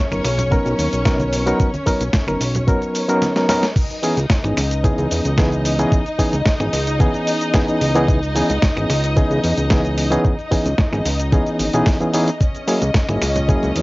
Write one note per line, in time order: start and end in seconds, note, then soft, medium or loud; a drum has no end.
0.00 3.77 C#4 medium
0.00 3.77 C#5 medium
0.11 0.21 F#1 medium
0.11 0.26 F#3 medium
0.11 0.26 B3 medium
0.11 0.26 C#4 medium
0.11 0.26 D#4 medium
0.11 0.26 A#4 medium
0.11 finger snap medium
0.11 closed hi-hat soft
0.11 high conga medium
0.11 shaker soft
0.24 0.59 B1 loud
0.24 finger snap medium
0.24 open hi-hat loud
0.24 shaker medium
0.38 closed hi-hat medium
0.38 low conga medium
0.38 shaker soft
0.51 1.02 F#3 medium
0.51 1.02 B3 medium
0.51 1.02 C#4 medium
0.51 1.03 D#4 medium
0.51 1.03 A#4 loud
0.51 kick loud
0.51 closed hi-hat medium
0.51 shaker soft
0.66 0.75 B1 loud
0.66 closed hi-hat soft
0.66 shaker soft
0.79 0.89 D#2 medium
0.79 open hi-hat medium
0.79 shaker medium
0.93 1.54 B1 medium
0.93 closed hi-hat medium
0.93 shaker soft
1.05 1.43 F#3 medium
1.05 1.43 B3 medium
1.05 1.43 C#4 medium
1.05 1.43 D#4 medium
1.05 1.44 A#4 loud
1.05 kick loud
1.05 snare loud
1.05 closed hi-hat medium
1.05 shaker soft
1.19 closed hi-hat soft
1.19 high conga medium
1.19 shaker soft
1.33 open hi-hat loud
1.33 shaker medium
1.46 1.70 F#3 loud
1.46 1.70 B3 medium
1.46 1.70 C#4 medium
1.46 1.71 D#4 medium
1.46 1.71 A#4 loud
1.46 closed hi-hat soft
1.46 shaker soft
1.60 kick loud
1.60 closed hi-hat medium
1.60 shaker soft
1.74 closed hi-hat soft
1.74 high conga medium
1.74 shaker soft
1.86 2.02 F#3 loud
1.86 2.02 B3 medium
1.86 2.02 C#4 medium
1.86 2.02 D#4 medium
1.86 2.02 A#4 loud
1.86 kick medium
1.86 open hi-hat medium
1.86 shaker medium
2.01 2.10 B1 loud
2.01 closed hi-hat medium
2.01 shaker soft
2.13 kick loud
2.13 snare loud
2.13 closed hi-hat medium
2.13 shaker soft
2.27 2.37 F#1 medium
2.27 2.42 F#3 medium
2.27 2.42 B3 medium
2.27 2.42 C#4 medium
2.27 2.42 D#4 medium
2.27 2.42 A#4 medium
2.27 finger snap medium
2.27 closed hi-hat soft
2.27 high conga medium
2.27 shaker soft
2.41 2.75 B1 loud
2.41 open hi-hat loud
2.41 shaker medium
2.55 closed hi-hat medium
2.55 low conga medium
2.55 shaker soft
2.67 3.06 F#3 loud
2.67 3.06 B3 medium
2.67 3.06 C#4 medium
2.67 3.06 D#4 medium
2.67 3.06 A#4 loud
2.67 kick loud
2.67 closed hi-hat medium
2.67 shaker soft
2.82 closed hi-hat soft
2.82 shaker soft
2.95 open hi-hat loud
2.95 shaker medium
3.08 3.32 F#3 loud
3.08 3.32 B3 medium
3.08 3.33 C#4 medium
3.08 3.33 D#4 medium
3.08 3.33 A#4 loud
3.08 closed hi-hat medium
3.08 shaker soft
3.22 snare medium
3.22 closed hi-hat medium
3.22 high conga medium
3.22 shaker soft
3.36 3.47 F#3 medium
3.36 3.47 B3 medium
3.36 3.47 C#4 medium
3.36 3.47 D#4 medium
3.36 3.47 A#4 medium
3.36 snare medium
3.36 closed hi-hat soft
3.36 shaker soft
3.49 3.64 F#3 medium
3.49 3.64 B3 medium
3.49 3.64 C#4 medium
3.49 3.64 D#4 medium
3.49 3.65 A#4 medium
3.49 snare medium
3.49 open hi-hat loud
3.49 low conga medium
3.49 shaker medium
3.63 snare medium
3.63 closed hi-hat medium
3.63 shaker soft
3.76 12.42 D#4 medium
3.76 12.40 D#5 medium
3.76 kick loud
3.76 closed hi-hat medium
3.76 crash loud
3.76 shaker soft
3.90 closed hi-hat soft
3.90 shaker soft
4.02 4.18 E3 loud
4.02 4.18 B3 medium
4.02 4.18 C#4 medium
4.02 4.18 D#4 medium
4.02 4.19 G#4 loud
4.02 open hi-hat loud
4.02 shaker medium
4.17 4.26 C#2 loud
4.17 closed hi-hat medium
4.17 shaker soft
4.30 kick loud
4.30 snare loud
4.30 closed hi-hat medium
4.30 shaker soft
4.44 4.53 G#1 loud
4.44 4.58 E3 medium
4.44 4.58 B3 medium
4.44 4.58 C#4 medium
4.44 4.59 D#4 medium
4.44 4.59 G#4 medium
4.44 finger snap medium
4.44 closed hi-hat soft
4.44 shaker soft
4.57 4.91 C#2 loud
4.57 finger snap medium
4.57 open hi-hat loud
4.57 shaker medium
4.71 closed hi-hat medium
4.71 shaker soft
4.84 5.35 E3 loud
4.84 5.35 B3 medium
4.84 5.35 C#4 medium
4.84 5.35 D#4 medium
4.84 5.35 G#4 loud
4.84 kick loud
4.84 closed hi-hat medium
4.84 shaker soft
4.98 5.07 C#2 loud
4.98 closed hi-hat soft
4.98 shaker soft
5.11 5.21 E2 medium
5.11 open hi-hat loud
5.11 shaker medium
5.25 5.86 C#2 medium
5.25 closed hi-hat medium
5.25 shaker soft
5.38 5.76 E3 medium
5.38 5.76 B3 medium
5.38 5.76 C#4 medium
5.38 5.76 D#4 medium
5.38 5.76 G#4 loud
5.38 kick loud
5.38 snare loud
5.38 closed hi-hat medium
5.38 shaker soft
5.52 closed hi-hat soft
5.52 shaker soft
5.65 open hi-hat loud
5.65 shaker medium
5.79 6.02 E3 medium
5.79 6.03 B3 medium
5.79 6.03 C#4 medium
5.79 6.03 D#4 medium
5.79 6.03 G#4 loud
5.79 closed hi-hat medium
5.79 shaker soft
5.92 kick loud
5.92 closed hi-hat medium
5.92 shaker soft
6.06 closed hi-hat soft
6.06 shaker soft
6.19 6.34 E3 loud
6.19 6.34 B3 medium
6.19 6.34 C#4 medium
6.19 6.35 D#4 medium
6.19 6.35 G#4 loud
6.19 kick medium
6.19 open hi-hat loud
6.19 shaker medium
6.33 6.42 C#2 medium
6.33 closed hi-hat medium
6.33 shaker soft
6.46 kick loud
6.46 snare loud
6.46 closed hi-hat medium
6.46 shaker soft
6.60 6.69 G#1 loud
6.60 6.74 E3 medium
6.60 6.74 B3 medium
6.60 6.75 C#4 medium
6.60 6.75 D#4 medium
6.60 6.75 G#4 medium
6.60 finger snap medium
6.60 closed hi-hat soft
6.60 shaker soft
6.73 7.08 C#2 loud
6.73 open hi-hat loud
6.73 shaker medium
6.87 closed hi-hat medium
6.87 shaker soft
7.00 7.51 E3 medium
7.00 7.51 B3 medium
7.00 7.51 C#4 medium
7.00 7.51 D#4 medium
7.00 7.51 G#4 loud
7.00 kick loud
7.00 closed hi-hat medium
7.00 shaker soft
7.14 closed hi-hat soft
7.14 shaker soft
7.27 open hi-hat loud
7.27 shaker medium
7.41 closed hi-hat medium
7.41 shaker soft
7.54 7.92 E3 medium
7.54 7.92 B3 medium
7.54 7.92 C#4 medium
7.54 7.92 D#4 medium
7.54 7.92 G#4 loud
7.54 kick loud
7.54 snare loud
7.54 closed hi-hat medium
7.54 shaker soft
7.68 closed hi-hat soft
7.68 shaker soft
7.81 8.43 C#2 medium
7.81 open hi-hat loud
7.81 shaker medium
7.95 8.19 E3 loud
7.95 8.19 B3 medium
7.95 8.19 C#4 medium
7.95 8.19 D#4 medium
7.95 8.19 G#4 loud
7.95 closed hi-hat medium
7.95 shaker soft
8.08 kick loud
8.08 closed hi-hat medium
8.08 shaker soft
8.23 closed hi-hat soft
8.23 shaker soft
8.35 8.50 E3 loud
8.35 8.51 B3 medium
8.35 8.51 C#4 medium
8.35 8.51 D#4 medium
8.35 8.51 G#4 loud
8.35 open hi-hat loud
8.35 shaker medium
8.49 8.59 C#2 medium
8.49 closed hi-hat medium
8.49 shaker soft
8.62 kick loud
8.62 snare loud
8.62 closed hi-hat medium
8.62 shaker soft
8.76 8.86 G#1 medium
8.76 8.91 E3 medium
8.76 8.91 B3 medium
8.76 8.91 C#4 medium
8.76 8.91 D#4 medium
8.76 8.91 G#4 medium
8.76 finger snap medium
8.76 closed hi-hat soft
8.76 shaker soft
8.89 9.24 C#2 loud
8.89 finger snap medium
8.89 open hi-hat loud
8.89 shaker medium
9.03 closed hi-hat medium
9.03 shaker soft
9.16 9.67 E3 loud
9.16 9.67 B3 medium
9.16 9.67 C#4 medium
9.16 9.68 D#4 medium
9.16 9.68 G#4 loud
9.16 kick loud
9.16 closed hi-hat medium
9.16 shaker soft
9.31 9.40 C#2 loud
9.31 closed hi-hat soft
9.31 shaker soft
9.43 9.53 E2 medium
9.43 open hi-hat loud
9.43 shaker medium
9.57 10.18 C#2 medium
9.57 closed hi-hat medium
9.57 shaker soft
9.70 10.08 E3 medium
9.70 10.08 B3 medium
9.70 10.08 C#4 medium
9.70 10.08 D#4 medium
9.70 10.09 G#4 loud
9.70 kick loud
9.70 snare loud
9.70 closed hi-hat medium
9.70 shaker soft
9.85 closed hi-hat soft
9.85 shaker soft
9.98 open hi-hat loud
9.98 shaker medium
10.11 10.35 E3 loud
10.11 10.35 B3 medium
10.11 10.35 C#4 medium
10.11 10.35 D#4 medium
10.11 10.35 G#4 loud
10.11 closed hi-hat soft
10.11 shaker soft
10.25 kick loud
10.25 closed hi-hat soft
10.25 shaker soft
10.39 closed hi-hat soft
10.39 shaker soft
10.51 10.67 E3 loud
10.51 10.67 B3 medium
10.51 10.67 C#4 medium
10.51 10.67 D#4 medium
10.51 10.67 G#4 loud
10.51 kick medium
10.51 open hi-hat loud
10.51 shaker medium
10.66 10.75 C#2 medium
10.66 closed hi-hat medium
10.66 shaker soft
10.78 kick loud
10.78 snare loud
10.78 closed hi-hat medium
10.78 shaker soft
10.92 11.02 G#1 loud
10.92 11.07 E3 medium
10.92 11.07 B3 medium
10.92 11.07 C#4 medium
10.92 11.07 D#4 medium
10.92 11.07 G#4 medium
10.92 finger snap medium
10.92 closed hi-hat soft
10.92 shaker soft
11.06 11.40 C#2 loud
11.06 open hi-hat loud
11.06 shaker medium
11.20 closed hi-hat medium
11.20 shaker soft
11.32 11.71 E3 loud
11.32 11.71 B3 medium
11.32 11.71 C#4 medium
11.32 11.71 D#4 medium
11.32 11.71 G#4 loud
11.32 kick loud
11.32 closed hi-hat soft
11.32 shaker soft
11.47 closed hi-hat soft
11.47 shaker soft
11.60 11.70 G#1 loud
11.60 open hi-hat loud
11.60 shaker medium
11.74 11.83 B1 medium
11.74 11.97 E3 loud
11.74 11.97 B3 medium
11.74 11.98 C#4 medium
11.74 11.98 D#4 medium
11.74 11.98 G#4 loud
11.74 closed hi-hat soft
11.74 shaker soft
11.86 kick loud
11.86 snare loud
11.86 open hi-hat medium
11.86 shaker soft
12.01 12.12 E3 medium
12.01 12.12 B3 medium
12.01 12.12 C#4 medium
12.01 12.12 D#4 medium
12.01 12.12 G#4 medium
12.01 closed hi-hat soft
12.01 shaker soft
12.14 12.29 E3 medium
12.14 12.29 B3 medium
12.14 12.29 C#4 medium
12.14 12.29 D#4 medium
12.14 12.29 G#4 loud
12.14 open hi-hat loud
12.14 shaker medium
12.28 closed hi-hat soft
12.28 shaker soft
12.41 13.82 C#4 medium
12.41 13.82 D#5 medium
12.41 kick loud
12.41 closed hi-hat medium
12.41 shaker soft
12.55 closed hi-hat soft
12.55 shaker soft
12.67 12.83 F#3 loud
12.67 12.83 A#3 medium
12.67 12.83 C#4 medium
12.67 12.83 E4 medium
12.67 12.83 G#4 loud
12.67 open hi-hat loud
12.67 shaker medium
12.81 12.91 C#2 loud
12.81 closed hi-hat medium
12.81 muted conga medium
12.81 shaker soft
12.94 kick loud
12.94 snare loud
12.94 closed hi-hat medium
12.94 shaker soft
13.09 13.18 G#1 medium
13.09 13.23 F#3 medium
13.09 13.23 A#3 medium
13.09 13.23 C#4 medium
13.09 13.24 E4 medium
13.09 13.24 G#4 medium
13.09 finger snap medium
13.09 closed hi-hat soft
13.09 high conga medium
13.09 shaker soft
13.22 13.56 C#2 loud
13.22 finger snap medium
13.22 open hi-hat loud
13.22 shaker medium
13.36 closed hi-hat medium
13.36 low conga medium
13.36 shaker soft
13.48 13.82 F#3 loud
13.48 13.82 A#3 medium
13.48 13.82 C#4 medium
13.48 13.82 E4 medium
13.48 13.82 G#4 loud
13.48 kick loud
13.48 closed hi-hat soft
13.48 shaker soft
13.63 13.72 C#2 loud
13.63 closed hi-hat soft
13.63 shaker soft
13.76 13.82 E2 medium
13.76 open hi-hat loud
13.76 shaker medium